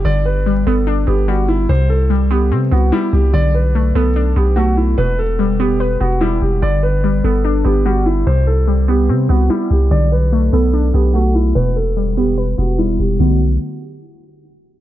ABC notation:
X:1
M:4/4
L:1/8
Q:1/4=146
K:Bphr
V:1 name="Grand piano"
d B2 A2 G F E | c A2 G z F E G | d B2 A2 G F E | B A2 G z F E G |
d B2 A2 G F E | c A2 G z F E G | d B2 A2 G F E | B A2 G z F E G |
F z6 z |]
V:2 name="Synth pluck"
D,2 G, B, D B, G,2 | C,2 G, B, C B, G,2 | D,2 A, B, D B, A,2 | B,,2 G, B, B B, G,2 |
D,2 G, B, D B, G,2 | C,2 G, B, C B, G,2 | D,2 A, B, D B, A,2 | B,,2 G, B, B B, G,2 |
[D,F,A,B,] z6 z |]
V:3 name="808-style bass" clef=bass
G,,,3 G,,,2 G,,,3 | C,,4 C, C,, z C,, | B,,,3 B,,,2 B,,,3 | E,,,4- E,,, E,,,2 E,,, |
G,,,3 G,,,2 G,,,3 | C,,4 C, C,, z C,, | B,,,3 B,,,2 B,,,3 | E,,,4- E,,, E,,,2 E,,, |
B,,,2 z6 |]